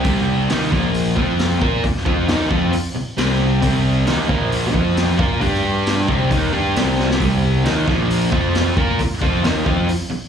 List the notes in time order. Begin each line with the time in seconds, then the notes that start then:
0.04 C2 C3 G3 C4, kick, open hi-hat
0.17 snare
0.49 D#2 D#3 A#3 D#4, snare, open hi-hat
0.71 A#1 A#2 F3 A#3, kick, snare
0.94 open hi-hat
1.16 F2 F3 C4 F4, kick
1.39 snare, open hi-hat
1.60 A#2 A#3 F4 A#4, kick
1.84 muted distorted electric guitar stroke, muted picked electric bass stroke, kick, open hi-hat
1.96 snare
2.05 F2 F3 C4 F4, kick
2.28 D#2 D#3 A#3 D#4, snare, open hi-hat
2.50 F2 F3 C4 F4, kick
2.73 muted distorted electric guitar stroke, muted picked electric bass stroke, open hi-hat
2.95 muted distorted electric guitar stroke, muted picked electric bass stroke
3.17 C2 C3 G3 C4, snare, open hi-hat
3.62 C2 C3 G3 C4, kick, open hi-hat
4.06 D#2 D#3 A#3 D#4, snare, open hi-hat
4.28 A#1 A#2 F3 A#3, kick
4.52 open hi-hat
4.73 F2 F3 C4 F4, kick
4.97 snare, open hi-hat
5.18 A#2 A#3 F4 A#4, kick
5.40 G2 G3 D4 G4, kick, open hi-hat
5.53 snare
5.86 snare, open hi-hat
6.08 C2 C3 G3 C4, kick
6.31 D#2 D#3 A#3 D#4, kick, open hi-hat
6.53 G2 G3 D4 G4
6.75 C2 C3 G3 C4, snare, open hi-hat
6.99 snare
7.11 snare
7.20 C2 C3 G3 C4, kick, open hi-hat
7.65 D#2 D#3 A#3 D#4, snare, open hi-hat
7.87 A#1 A#2 F3 A#3, kick, snare
8.10 open hi-hat
8.31 F2 F3 C4 F4, kick
8.55 snare, open hi-hat
8.76 A#2 A#3 F4 A#4, kick
8.99 muted picked electric bass stroke, muted distorted electric guitar stroke, kick, open hi-hat
9.21 F2 F3 C4 F4, kick
9.43 D#2 D#3 A#3 D#4, snare, open hi-hat
9.65 F2 F3 C4 F4, kick
9.88 muted distorted electric guitar stroke, muted picked electric bass stroke, open hi-hat
10.10 muted distorted electric guitar stroke, muted picked electric bass stroke